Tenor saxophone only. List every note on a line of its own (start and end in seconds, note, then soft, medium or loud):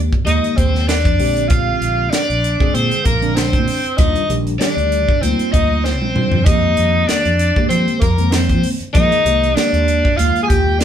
0.26 0.58 D#4 medium
0.56 0.87 C4 medium
0.88 1.50 D4 medium
1.48 2.12 F4 medium
2.11 2.75 D4 medium
2.74 3.06 C4 medium
3.05 3.37 A#3 medium
3.35 3.99 C4 medium
3.97 4.33 D#4 medium
4.59 5.23 D4 medium
5.21 5.52 C4 medium
5.53 5.86 D#4 medium
5.85 6.46 C4 medium
6.44 7.09 D#4 medium
7.08 7.68 D4 medium
7.69 7.98 C4 medium
8.00 8.33 A#3 medium
8.31 8.67 C4 medium
8.94 9.56 D#4 loud
9.55 10.18 D4 medium
10.17 10.42 F4 medium
10.43 10.49 G#4 medium
10.47 10.78 G4 medium
10.79 10.84 D4 medium